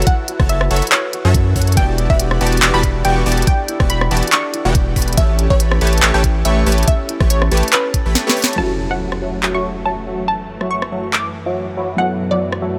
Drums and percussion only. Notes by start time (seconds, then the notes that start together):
0.02 closed hi-hat
0.07 kick, closed hi-hat
0.28 closed hi-hat
0.40 kick, cross-stick
0.49 closed hi-hat
0.61 cross-stick
0.71 closed hi-hat
0.76 closed hi-hat
0.82 closed hi-hat
0.87 closed hi-hat
0.92 clap, closed hi-hat
1.13 closed hi-hat
1.34 kick, closed hi-hat
1.56 kick, open hi-hat
1.62 closed hi-hat
1.67 closed hi-hat
1.72 closed hi-hat
1.77 kick, closed hi-hat
1.98 closed hi-hat
2.10 kick
2.20 closed hi-hat
2.31 cross-stick
2.41 closed hi-hat
2.47 closed hi-hat
2.52 closed hi-hat
2.57 closed hi-hat
2.62 clap, closed hi-hat
2.83 kick, closed hi-hat
3.05 closed hi-hat
3.26 open hi-hat
3.32 closed hi-hat
3.37 closed hi-hat
3.42 closed hi-hat
3.47 kick, closed hi-hat
3.68 closed hi-hat
3.80 kick, cross-stick
3.90 closed hi-hat
4.01 cross-stick
4.11 closed hi-hat
4.17 closed hi-hat
4.23 closed hi-hat
4.27 closed hi-hat
4.32 clap, closed hi-hat
4.54 closed hi-hat
4.75 kick, closed hi-hat
4.96 kick, open hi-hat
5.02 closed hi-hat
5.08 closed hi-hat
5.13 closed hi-hat
5.17 kick, closed hi-hat
5.39 closed hi-hat
5.50 kick
5.60 closed hi-hat
5.71 cross-stick
5.81 closed hi-hat
5.87 closed hi-hat
5.93 closed hi-hat
5.98 closed hi-hat
6.02 clap, closed hi-hat
6.24 kick, closed hi-hat
6.45 closed hi-hat
6.66 open hi-hat
6.72 closed hi-hat
6.78 closed hi-hat
6.83 closed hi-hat
6.88 kick, closed hi-hat
7.09 closed hi-hat
7.20 kick, cross-stick
7.30 closed hi-hat
7.42 cross-stick
7.52 closed hi-hat
7.57 closed hi-hat
7.63 closed hi-hat
7.68 closed hi-hat
7.73 clap, closed hi-hat
7.94 kick, closed hi-hat
8.15 snare, closed hi-hat
8.29 snare
8.37 open hi-hat
8.42 snare, closed hi-hat
8.48 closed hi-hat
8.53 closed hi-hat
9.12 cross-stick
9.43 clap
10.61 cross-stick
10.82 cross-stick
11.13 clap
12.52 cross-stick